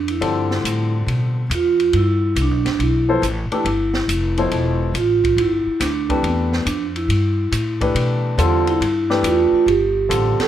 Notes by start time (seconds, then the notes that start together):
Already playing: F2
0.08 E4, ride
0.21 G2 D3 F3 G3 C4 A4, ride
0.51 snare
0.63 A2, hi-hat pedal, ride
1.06 B2, ride
1.50 E2, hi-hat pedal, ride
1.55 F4
1.80 ride
1.93 G2 E4, ride
2.36 C2, hi-hat pedal, ride
2.42 D4
2.51 B1
2.65 G1, snare, ride
2.79 B1 E4, ride
3.09 F3 B3 E4 A4 C5
3.22 A1, hi-hat pedal, ride
3.51 E3 A3 D4 E4 G4 B4, muted upright bass stroke, ride
3.65 G1, ride
3.94 snare
4.08 F1, hi-hat pedal, ride
4.37 B2 F3 E4 A4 C5, ride
4.51 E1, ride
4.94 A1 F4, hi-hat pedal, ride
5.24 kick, ride
5.36 G1 E4, ride
5.66 muted upright bass stroke
5.80 D2 D4, snare, hi-hat pedal, ride
6.09 E3 A3 C4 D4 G4 B4, kick, ride
6.23 E2 B3, ride
6.52 snare
6.66 F2 D4, hi-hat pedal, ride
6.96 E4, ride
7.08 G2, ride
7.52 A2, hi-hat pedal, ride
7.81 E3 A3 D4 G4 B4, kick, ride
7.95 B2, ride
8.38 E2 D3 G3 C4 F4 A4, hi-hat pedal, ride
8.67 E4, ride
8.81 G2, ride
9.10 E3 A3 D4 G4 B4, snare
9.23 E2 F4, hi-hat pedal, ride
9.52 F4, muted upright bass stroke
9.66 G1 G4, ride
10.09 A1 D3 G3 C4 F4 A4, hi-hat pedal, ride
10.39 A4, muted upright bass stroke, snare, ride